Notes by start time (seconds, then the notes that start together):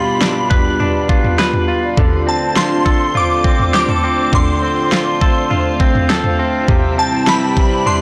Already playing: B2 G3 B3 D4 F4 G4 B5
0.21 D4, snare
0.50 B4, kick, floor tom
0.80 D4, floor tom
1.09 F4, kick
1.24 floor tom
1.38 B4, snare
1.53 floor tom
1.68 F4
1.97 D3 A3 C4 C5, kick, floor tom
2.27 C4 C5 A5
2.56 F4 C6, snare
2.85 A4, kick
3.15 F4 D6, floor tom
3.44 C4, kick
3.59 floor tom
3.74 G4 C5 D6, snare
3.88 A4, floor tom
4.04 C4
4.33 D3 C6, kick, floor tom
4.62 C4
4.92 F4, snare
5.21 A4 F5, kick
5.50 F4, floor tom
5.80 C4, kick
5.95 floor tom
6.10 A4, snare
6.24 floor tom
6.39 C4
6.68 C3 G3 E4 G4, kick, floor tom
6.98 C4 B4 A5
7.18 D5
7.27 E4 B5, snare
7.57 kick
7.86 D4 C6, floor tom